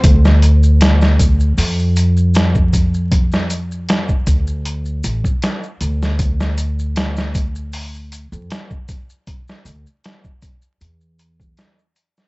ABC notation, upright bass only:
X:1
M:4/4
L:1/16
Q:1/4=78
K:Dm
V:1 name="Upright bass" clef=bass
D,,8 F,,8- | F,,6 D,,4 A,,, z3 D,,2- | D,,8- D,,3 F,, z4 | z2 D,, z4 z E,,4 z4 |]